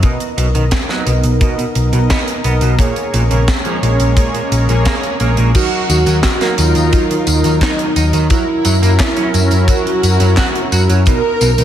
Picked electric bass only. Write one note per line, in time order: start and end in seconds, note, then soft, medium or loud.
0.38 0.53 B1 medium
0.55 0.70 B1 medium
1.07 1.22 B1 medium
1.24 1.39 B1 medium
1.76 1.91 B1 medium
1.93 2.08 B1 medium
2.45 2.59 B1 medium
2.62 2.77 B1 medium
3.14 3.28 A#1 medium
3.31 3.46 A#1 medium
3.83 3.97 A#1 loud
4.00 4.15 A#1 medium
4.52 4.66 A#1 medium
4.69 4.84 A#1 medium
5.20 5.35 A#1 medium
5.38 5.53 A#1 medium
5.89 6.04 D#2 medium
6.07 6.21 D#2 medium
6.58 6.73 D#2 medium
6.75 6.90 D#2 medium
7.27 7.42 D#2 medium
7.45 7.59 D#2 medium
7.96 8.11 D#2 medium
8.13 8.28 D#2 medium
8.65 8.80 F#2 medium
8.82 8.97 F#2 medium
9.34 9.49 F#2 medium
9.52 9.66 F#2 medium
10.03 10.18 F#2 medium
10.20 10.35 F#2 medium
10.72 10.87 F#2 medium
10.89 11.04 F#2 medium
11.41 11.56 B1 medium
11.58 11.64 B1 medium